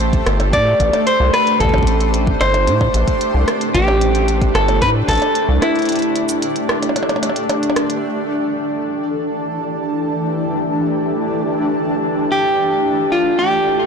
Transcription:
Already playing: acid bass A1, ambient pad A3 D4 G4 A4 C5, clean electric guitar C5
0.00 closed hi-hat
0.13 kick, closed hi-hat
0.26 acid bass G1, cross-stick, closed hi-hat
0.40 closed hi-hat, percussion blips
0.53 acid bass A2, clean electric guitar D5, kick, closed hi-hat
0.80 acid bass A1, kick, closed hi-hat
0.93 closed hi-hat, percussion blips
1.07 clean electric guitar C5, closed hi-hat
1.20 acid bass C2
1.34 clean electric guitar B4, cross-stick, closed hi-hat, percussion blips
1.47 closed hi-hat
1.60 acid bass A1, clean electric guitar A4, kick, closed hi-hat
1.65 kick
1.69 kick
1.74 kick, percussion blips
1.78 kick
1.83 kick
1.87 closed hi-hat
2.00 closed hi-hat
2.14 closed hi-hat
2.27 kick
2.41 acid bass G1, clean electric guitar C5, cross-stick, closed hi-hat
2.54 closed hi-hat, percussion blips
2.67 acid bass A2, closed hi-hat
2.81 kick, percussion blips
2.94 acid bass A1, closed hi-hat
3.08 kick, closed hi-hat
3.21 closed hi-hat
3.34 acid bass C2
3.48 cross-stick, closed hi-hat
3.61 closed hi-hat
3.74 acid bass A1, clean electric guitar G4, kick, closed hi-hat
3.88 percussion blips
4.01 closed hi-hat
4.15 closed hi-hat
4.28 closed hi-hat
4.42 kick, closed hi-hat
4.55 acid bass G1, clean electric guitar A4, cross-stick, closed hi-hat
4.68 closed hi-hat, percussion blips
4.82 acid bass A2, clean electric guitar B4, kick, closed hi-hat
5.08 acid bass A1, clean electric guitar A4, kick, closed hi-hat
5.11 closed hi-hat
5.13 closed hi-hat
5.15 closed hi-hat
5.17 closed hi-hat
5.20 closed hi-hat
5.22 closed hi-hat, percussion blips
5.35 closed hi-hat
5.49 acid bass C2
5.62 clean electric guitar E4, cross-stick, closed hi-hat, percussion blips
5.75 closed hi-hat
5.79 closed hi-hat
5.82 closed hi-hat
5.85 closed hi-hat
5.89 closed hi-hat
5.92 closed hi-hat
5.96 closed hi-hat
5.99 closed hi-hat
6.02 closed hi-hat
6.16 closed hi-hat
6.29 closed hi-hat, cabasa
6.42 closed hi-hat
6.56 closed hi-hat
6.69 cross-stick
6.83 closed hi-hat, percussion blips
6.89 percussion blips
6.96 closed hi-hat, percussion blips
7.03 percussion blips
7.09 closed hi-hat, percussion blips
7.16 percussion blips
7.23 closed hi-hat, percussion blips
7.29 percussion blips
7.36 closed hi-hat
7.49 closed hi-hat, percussion blips
7.63 closed hi-hat
7.70 percussion blips
7.76 cross-stick, closed hi-hat
7.90 closed hi-hat
8.03 ambient pad E3, synth texture A4 A5
8.56 ambient pad A3
8.80 ambient pad G4
12.15 ambient pad A4
12.32 clean electric guitar G4
13.12 clean electric guitar F4
13.39 clean electric guitar G4

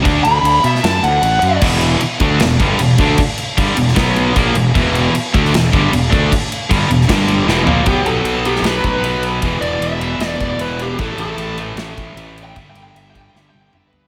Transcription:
0.03 fingered electric bass D2, overdriven electric guitar D3 A3 D4, kick, crash
0.24 fingered electric bass D2, lead electric guitar B5, crash
0.43 fingered electric bass D2, crash
0.64 fingered electric bass B2, lead electric guitar E5, crash
0.75 snare
0.83 fingered electric bass F#2, lead electric guitar A5, snare, crash
1.03 fingered electric bass D2, lead electric guitar F#5, crash
1.22 fingered electric bass A1, crash
1.42 fingered electric bass F#2, crash
1.62 fingered electric bass E1, overdriven electric guitar E2 B2 E3, kick, crash
1.81 crash
2.00 muted fingered electric bass stroke, muted overdriven electric guitar stroke, crash
2.20 fingered electric bass D2, overdriven electric guitar D3 A3 D4, kick, crash
2.40 fingered electric bass E1, overdriven electric guitar E2 B2, snare, crash
2.60 fingered electric bass G1, overdriven electric guitar G2 D3 G3, kick, crash
2.78 fingered electric bass E1, overdriven electric guitar E2 B2, crash
2.98 fingered electric bass D2, overdriven electric guitar D3 A3 D4, kick, crash
3.18 kick, crash
3.38 crash
3.57 fingered electric bass G1, overdriven electric guitar G2 D3 G3, kick, crash
3.75 fingered electric bass E1, overdriven electric guitar E2 B2, crash
3.88 snare
3.95 fingered electric bass B1, overdriven electric guitar B2 F#3 B3, kick, snare, crash
4.16 crash
4.35 fingered electric bass A#1, overdriven electric guitar A#2 F3 A#3, kick, crash
4.55 fingered electric bass E1, overdriven electric guitar E2 B2, crash
4.75 fingered electric bass E1, overdriven electric guitar E2 B2 E3, kick, crash
4.95 crash
5.14 muted fingered electric bass stroke, muted overdriven electric guitar stroke, crash
5.34 fingered electric bass D2, overdriven electric guitar D3 A3 D4, kick, crash
5.45 snare
5.54 fingered electric bass E1, overdriven electric guitar E2 B2, snare, crash
5.73 fingered electric bass G1, overdriven electric guitar G2 D3 G3, kick, crash
5.93 fingered electric bass E1, overdriven electric guitar E2 B2, crash
6.12 fingered electric bass D2, overdriven electric guitar D3 A3 D4, kick, crash
6.32 kick, crash
6.52 crash
6.71 fingered electric bass G1, overdriven electric guitar G2 D3 G3, kick, crash
6.89 fingered electric bass E1, overdriven electric guitar E2 B2, crash
7.01 snare
7.09 fingered electric bass G1, overdriven electric guitar G2 D3 G3, kick, snare, crash
7.28 crash
7.46 fingered electric bass E1, overdriven electric guitar E2 B2 E3, snare
7.64 fingered electric bass A#1, overdriven electric guitar A#2 A#3, floor tom
7.69 overdriven electric guitar F3
7.86 fingered electric bass B1, overdriven electric guitar B2 F#3 B3, lead electric guitar G4, kick, ride
8.04 fingered electric bass B1, lead electric guitar A4, ride
8.24 fingered electric bass B1, ride
8.45 overdriven electric guitar B2 F#3 B3, lead electric guitar G4, ride
8.56 snare
8.62 fingered electric bass B1, overdriven electric guitar B2 F#3, snare, ride
8.66 overdriven electric guitar B3, lead electric guitar B4
8.84 fingered electric bass B1, lead electric guitar B4, kick, ride
9.01 fingered electric bass B1, overdriven electric guitar B2 F#3, ride
9.06 overdriven electric guitar B3
9.23 ride
9.42 fingered electric bass E1, overdriven electric guitar E2 B2 E3, kick, ride
9.60 fingered electric bass E1, lead electric guitar D5, ride
9.80 fingered electric bass E1, lead electric guitar E5, ride
10.00 overdriven electric guitar E2 B2 E3, ride
10.19 fingered electric bass E1, overdriven electric guitar E2 B2, snare, ride
10.24 overdriven electric guitar E3, lead electric guitar D5
10.39 fingered electric bass E1, lead electric guitar D5, kick, ride
10.59 fingered electric bass E1, overdriven electric guitar E2 B2 E3, lead electric guitar B4, ride
10.79 lead electric guitar G4, ride
10.98 fingered electric bass A1, overdriven electric guitar A2 E3 A3, lead electric guitar A4, kick, ride
11.17 fingered electric bass A1, lead electric guitar A4, ride
11.37 fingered electric bass A1, ride
11.57 overdriven electric guitar A2 E3 A3, ride
11.76 fingered electric bass A1, overdriven electric guitar A2 E3 A3, snare, ride
11.97 fingered electric bass A1, kick, ride
12.15 fingered electric bass A1, overdriven electric guitar A2 E3 A3, ride
12.38 ride
12.44 lead electric guitar G5
12.55 fingered electric bass G1, overdriven electric guitar G2 D3 G3, lead electric guitar E5, kick, ride
12.71 lead electric guitar G5
12.75 fingered electric bass G1, ride
12.83 lead electric guitar G5
12.94 fingered electric bass G1, lead electric guitar E5, ride
13.10 overdriven electric guitar G3, lead electric guitar G5
13.15 overdriven electric guitar G2 D3, kick, ride
13.21 lead electric guitar G5
13.33 fingered electric bass G1, overdriven electric guitar G2 D3 G3, lead electric guitar E5, snare
13.49 lead electric guitar G5
13.53 fingered electric bass G1, high tom
13.61 lead electric guitar G5
13.72 fingered electric bass G1, overdriven electric guitar G2 D3 G3, lead electric guitar E5, mid tom
13.87 lead electric guitar B4
13.93 floor tom

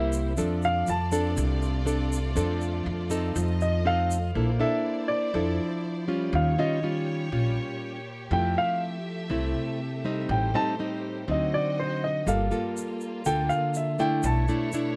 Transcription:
Already playing: upright bass C2, nylon-string guitar C3 G3 A#3 E4, violin section A#3 E4 C5, grand piano E5 G5
0.12 shaker
0.37 upright bass F2, nylon-string guitar F3 C4 D4 A4, violin section A3 F4 D5, shaker
0.62 grand piano F5, shaker
0.87 upright bass F2, grand piano A5, shaker
1.12 nylon-string guitar C4 D4 A4, shaker
1.36 upright bass C2, nylon-string guitar C3, shaker
1.62 shaker
1.85 nylon-string guitar C4 D4 A4, shaker
2.13 shaker
2.36 upright bass F2, nylon-string guitar F3 C4 D4 A4, shaker
2.61 shaker
2.86 upright bass F2
3.10 nylon-string guitar C4 D#4 A4, shaker
3.34 upright bass F2, nylon-string guitar F3, violin section D#5, shaker
3.61 grand piano D#5, shaker
3.85 nylon-string guitar C4 D#4 A4, grand piano F5
4.11 shaker
4.34 upright bass A#1, nylon-string guitar A#3 D4 E4 A4, violin section E4 C5 D5
4.59 nylon-string guitar D4 E4 A4, grand piano E5
5.08 grand piano D5
5.34 upright bass F2, nylon-string guitar F3 D4 E4 A4
6.08 nylon-string guitar G3 C#4 F4
6.33 upright bass D#2, nylon-string guitar D#3, violin section G3 G4 C#5, grand piano F5
6.58 nylon-string guitar G3 C#4 F4, grand piano D#5
6.83 nylon-string guitar G3 C#4 F4
7.32 upright bass A#1, nylon-string guitar A#2 G3 C#4 F4
8.31 upright bass F2, nylon-string guitar F3 A3 C4 E4, violin section A3 E5, grand piano G5
8.58 grand piano F5
9.30 upright bass C2, nylon-string guitar C3 A3 C4 E4
10.04 nylon-string guitar G3 C4 D#4
10.29 upright bass A1, nylon-string guitar A2, violin section G4 C5, grand piano G5
10.54 nylon-string guitar G3 C4 D#4, grand piano A5
10.79 nylon-string guitar G3 C4 D#4
11.28 upright bass D2, nylon-string guitar D3 F#3 C4 D#4, violin section C4 F#4 D#5, grand piano D#5
11.54 grand piano D5
11.79 grand piano C5
12.04 grand piano D#5
12.26 upright bass G1, nylon-string guitar G3 A#3 F4 A4, violin section A#3 F4, grand piano F5, shaker
12.51 nylon-string guitar A#3 F4 A4, shaker
12.77 shaker
13.01 shaker
13.25 upright bass D2, nylon-string guitar D3 A#3 F4 A4, grand piano G5, shaker
13.49 grand piano F5, shaker
13.74 grand piano E5, shaker
13.99 nylon-string guitar A3 D4 E4, grand piano G5, shaker
14.23 upright bass B1, nylon-string guitar B2, violin section D4 E4 C#5, grand piano A5, shaker
14.48 nylon-string guitar A3 D4 E4, shaker
14.72 nylon-string guitar A3 D4 E4, shaker

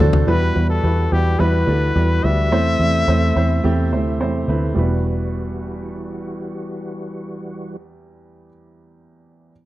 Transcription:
Already playing: upright piano A2 C5, tonewheel organ D3 A3 F#4
0.00 picked electric bass D2, upright piano D4 F#4 A4
0.13 floor tom
0.27 picked electric bass E2, upright piano B2 G3 E4 F#4 B4, tonewheel organ E3 G3 F#4, trumpet B4
0.55 picked electric bass E2, upright piano G3 E4 F#4 B4
0.70 trumpet A4
0.83 picked electric bass E2, upright piano G3 E4 F#4 B4
1.12 picked electric bass E2, upright piano G3 E4 F#4 B4, trumpet G4
1.39 picked electric bass E2, upright piano G3 E4 F#4 B4, trumpet B4
1.67 picked electric bass D2, upright piano G3 E4 F#4 A4
1.95 picked electric bass E2, upright piano G3 E4 F#4 D5
2.24 picked electric bass D2, upright piano G3 E4 F#4 B4, trumpet E5
2.51 picked electric bass E2, tonewheel organ C3 A3 E4, upright piano E3 A3 C4 E4 C5
2.79 picked electric bass E2, upright piano A3 C4 E4 D5
3.08 picked electric bass E2, upright piano A3 C4 E4 C5
3.36 picked electric bass E2, upright piano A3 C4 E4 C5
3.64 picked electric bass E2, upright piano A3 C4 E4 G4
3.92 picked electric bass D2, upright piano A3 C4 E4 C5
4.20 picked electric bass E2, upright piano A3 C4 E4 C5
4.48 picked electric bass D2, upright piano A3 C4 E4 B4
4.75 picked electric bass E1, upright piano E2 G3 E4 F#4, tonewheel organ E3 G3 F#4
4.79 upright piano B4

